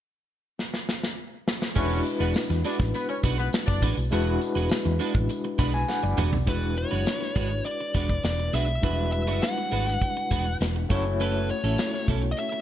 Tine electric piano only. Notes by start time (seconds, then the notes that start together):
1.75 G#3 D4 E4 F#4 B4
4.11 G#3 D4 E4 F#4 B4
5.59 B5
5.74 G#5
5.88 F#5
6.03 D5
6.46 G#3 D4 E4 F#4 B4
8.82 G3 D4 E4 F#4 B4
8.88 G#3
10.89 A3 C#4 E4 F#4 C#5